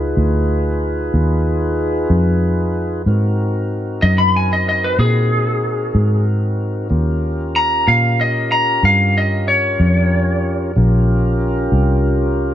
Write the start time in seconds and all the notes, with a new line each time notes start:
Already playing: C#2 D#4 F4 G#4 B4
0.17 D2
1.14 D#2
2.10 F2
3.06 G#2 C4 D#4 F#4 A#4
4.02 F#2 D#5
4.18 B5
4.36 G#5
4.53 D#5
4.69 D#5
4.84 B4
4.99 A#2 G#4
5.95 G#2
6.89 D#2 C#4 F4 G4 A#4
7.56 A#5
7.88 A#2 F5
8.21 D#5
8.52 A#5
8.83 G2 F5
9.18 D#5
9.48 C#5
9.80 F2
10.76 A#1 C#4 F4 G4 A#4
11.72 C2